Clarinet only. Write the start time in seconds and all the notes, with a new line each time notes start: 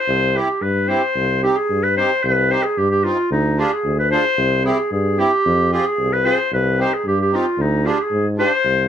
0.00 C5
0.37 G4
0.62 B4
0.89 C5
1.43 G4
1.56 G#4
1.83 B4
1.97 C5
2.23 B4
2.51 C5
2.63 G#4
2.78 G4
2.91 G4
3.04 F4
3.32 D#4
3.59 G4
3.73 G#4
3.99 B4
4.12 C5
4.66 G#4
4.92 G#4
5.19 G4
5.73 G4
5.85 G#4
6.13 B4
6.26 C5
6.53 B4
6.81 C5
6.94 G#4
7.07 G4
7.21 G4
7.35 F4
7.61 D#4
7.86 G4
8.01 G#4
8.39 C5